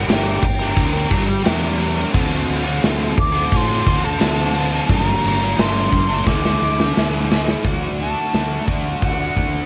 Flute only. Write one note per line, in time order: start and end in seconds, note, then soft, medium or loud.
0.10 1.09 G5 medium
3.20 3.58 D6 loud
3.57 4.06 C6 loud
4.05 4.90 A5 loud
4.93 5.62 A#5 loud
5.61 6.29 C6 medium
6.27 7.30 D6 loud
8.01 8.64 A5 loud
9.02 9.66 F#5 loud